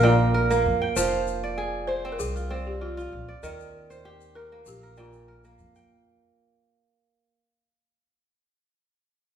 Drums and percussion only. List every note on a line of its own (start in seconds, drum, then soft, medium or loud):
0.51 shaker soft
0.97 shaker medium
1.27 shaker soft
2.20 shaker medium
2.36 shaker soft
2.99 shaker soft
3.43 shaker medium
3.60 shaker soft
3.91 shaker soft
4.21 shaker soft
4.66 shaker medium
4.97 shaker soft
5.13 shaker soft
5.44 shaker soft
5.58 shaker soft
5.75 shaker soft